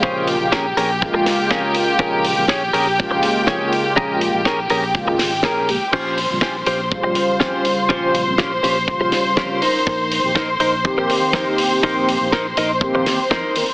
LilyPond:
<<
  \new Staff \with { instrumentName = "String section" } { \time 4/4 \key bes \dorian \tempo 4 = 122 <g' g''>1~ | <g' g''>1~ | <g' g''>1 | c''1~ |
c''1~ | c''1~ | c''1 | }
  \new Staff \with { instrumentName = "Clean electric guitar" } { \time 4/4 \key bes \dorian <des' aes' c''>8 r8 <des' aes' bes'>16 r16 <des' aes' bes'>16 r4 r16 <des' aes' bes'>8 r8 | <des' aes' bes'>8 r8 <des' aes' des''>16 r16 <des' aes' bes'>16 r4 r16 <des' aes' des''>8 r8 | <des' aes' bes'>8 r8 <des' aes' bes'>16 r16 <des' aes' bes'>16 r4 r16 <des' aes' bes'>8 r8 | <des' f' g' c''>8 r8 <des' f' g' c''>16 r16 <des' f' g' c''>16 r4 r16 <des' f' g' c''>8 r8 |
<des' f' g' c''>8 r8 <des' f' g' bes'>16 r16 <des' f' g' c''>16 r4 r16 <des' f' g' bes'>8 <ees' bes' c''>8~ | <ees' bes' c''>8 r8 <ees' bes' c''>16 r16 <ees' bes' c''>16 r4 r16 <ees' bes' c''>8 r8 | <ees' bes' c''>8 r8 <ees' bes' c''>16 r16 <ees' bes' ees''>16 r4 r16 <ees' bes' c''>8 r8 | }
  \new Staff \with { instrumentName = "Analog polysynth" } { \time 4/4 \key bes \dorian <des aes bes f'>8. <des aes bes f'>16 r4 <des aes bes f'>2~ | <des aes bes f'>8. <des aes bes f'>16 r4 <des aes bes f'>2~ | <des aes bes f'>8. <des aes bes f'>16 r4 <des aes bes f'>8 <des aes bes f'>16 r8. <des aes bes g'>16 r16 | r8. <des g c' f'>16 r4 <des g f' c''>2~ |
<des g f' c''>8. <des g c' f'>16 r4 <des g f' c''>4. r8 | r8. <ees bes c' g'>16 r4 <ees bes c' g'>2~ | <ees bes c' g'>8. <ees bes c' g'>16 r4 <ees bes c' g'>8 <ees bes c' g'>16 r8. <ees bes c' bes'>16 r16 | }
  \new Staff \with { instrumentName = "Fingered electric bass" } { \clef bass \time 4/4 \key bes \dorian bes,,8. bes,,8. bes,,8. bes,,16 r8 f,16 r8. | bes,,8. bes,,8. bes,,8. bes,,16 r8 f,16 r8. | bes,,8. bes,,8. bes,,8. aes,,8. bes,,8. r16 | bes,,8. bes,,8. bes,,8. bes,,16 r8 f,16 r8. |
bes,,8. bes,,8. bes,,8. bes,,16 r8 f,16 r8. | bes,,8. bes,,8. bes,,8. bes,,16 r8 f,16 r8. | bes,,8. bes,,8. bes,,8. bes,,16 r8 f,16 r8. | }
  \new DrumStaff \with { instrumentName = "Drums" } \drummode { \time 4/4 bd8 hho8 <bd sn>8 hho8 bd8 <hho sn>8 <bd sn>8 hho8 | bd8 hho8 <bd sn>8 hho8 bd8 hho8 <bd sn>8 hho8 | bd8 hho8 <bd sn>8 hho8 bd8 <hho sn>8 <bd sn>8 hho8 | <cymc bd>8 hho8 <bd sn>8 hho8 bd8 hho8 <bd sn>8 hho8 |
bd8 hho8 <bd sn>8 hho8 bd8 <hho sn>8 <bd sn>8 hho8 | bd8 hho8 <bd sn>8 hho8 bd8 hho8 <bd sn>8 hho8 | bd8 hho8 <bd sn>8 hho8 bd8 <hho sn>8 <bd sn>8 hho8 | }
>>